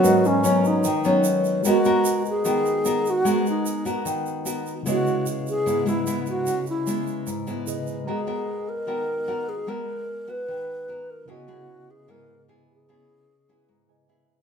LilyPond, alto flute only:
\new Staff \with { instrumentName = "Alto flute" } { \time 4/4 \key gis \minor \tempo 4 = 150 fis'8 cis'4 dis'4. r4 | fis'4. gis'2 fis'8~ | fis'8 dis'4 r2 r8 | fis'4 r8 gis'4 e'4 fis'8~ |
fis'8 e'2 r4. | gis'4. ais'2 gis'8 | ais'4. b'2 ais'8 | fis'4. gis'8 ais'4 r8 gis'8~ |
gis'2. r4 | }